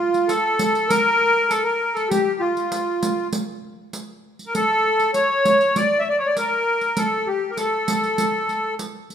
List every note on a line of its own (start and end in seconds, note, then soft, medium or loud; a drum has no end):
0.00 0.31 F4 medium
0.14 riq soft
0.28 0.91 A4 loud
0.28 riq medium
0.59 riq medium
0.75 riq soft
0.89 1.52 A#4 loud
0.89 riq medium
1.49 1.64 A4 medium
1.49 riq soft
1.64 1.96 A#4 medium
1.94 2.09 A4 medium
1.94 riq soft
2.09 2.41 G4 medium
2.09 riq medium
2.40 3.28 F4 medium
2.57 riq soft
2.72 riq medium
3.03 riq medium
3.33 riq medium
3.93 riq soft
4.39 riq soft
4.46 4.53 A#4 medium
4.55 5.11 A4 loud
4.55 riq medium
5.00 riq soft
5.14 5.77 C#5 loud
5.14 riq soft
5.45 riq medium
5.61 riq soft
5.76 6.00 D5 loud
5.76 riq medium
5.99 6.08 E5 medium
6.09 6.18 D5 medium
6.18 6.27 C#5 medium
6.26 6.36 D5 medium
6.37 6.99 A#4 loud
6.37 riq soft
6.81 riq soft
6.97 7.28 A4 medium
6.97 riq medium
7.27 7.51 G4 medium
7.50 7.57 A#4 medium
7.57 8.74 A4 medium
7.57 riq soft
7.88 riq medium
8.04 riq soft
8.18 riq medium
8.49 riq soft
8.79 riq soft
9.10 riq soft